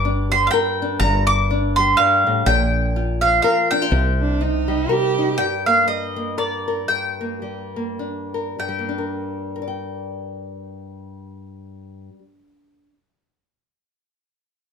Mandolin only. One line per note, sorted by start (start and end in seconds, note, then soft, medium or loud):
0.00 0.31 D6 loud
0.32 0.47 C6 medium
0.47 0.50 F5 medium
0.47 0.96 G5 medium
1.00 1.26 A#5 loud
1.27 1.73 D6 medium
1.76 1.96 C6 loud
1.97 2.47 F5 medium
2.46 3.21 G5 loud
3.21 3.41 F5 medium
3.42 3.69 F5 medium
3.71 5.13 G5 medium
5.38 5.66 G5 medium
5.66 5.86 F5 medium
5.88 6.38 D#5 medium
6.38 6.86 D5 medium
6.88 8.28 G5 medium
8.60 11.82 G5 medium